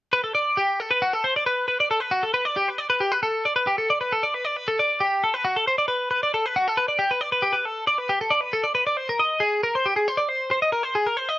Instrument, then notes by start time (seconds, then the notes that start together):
clean electric guitar
0.13 B4
0.24 A4
0.35 D5
0.57 G4
0.80 A4
0.91 B4
1.02 F#4
1.13 A4
1.24 C5
1.36 D5
1.46 B4
1.68 B4
1.80 D5
1.91 A4
2.00 B4
2.11 F#4
2.23 A4
2.34 B4
2.45 D5
2.56 G4
2.68 B4
2.78 D5
2.90 B4
3.00 G4
3.12 B4
3.23 A4
3.45 D5
3.56 B4
3.67 G4
3.78 A4
3.90 D5
4.01 B4
4.12 A4
4.23 D5
4.34 B4
4.45 D5
4.57 B4
4.68 A4
4.79 D5
5.00 G4
5.24 A4
5.34 B4
5.45 F#4
5.56 A4
5.67 C5
5.78 D5
5.88 B4
6.11 B4
6.23 D5
6.34 A4
6.46 B4
6.56 F#4
6.68 A4
6.77 B4
6.88 D5
6.99 G4
7.11 B4
7.21 D5
7.32 B4
7.42 G4
7.53 B4
7.65 A4
7.87 D5
7.98 B4
8.09 G4
8.21 A4
8.31 D5
8.41 B4
8.53 A4
8.64 D5
8.75 B4
8.87 D5
8.97 C5
9.09 A#4
9.20 D#5
9.40 G#4
9.63 A#4
9.75 C5
9.86 G4
9.96 G#4
10.08 C5
10.17 D5
10.29 C5
10.51 C5
10.62 D#5
10.72 A#4
10.83 C5
10.95 G#4
11.07 A#4
11.17 C5
11.29 D#5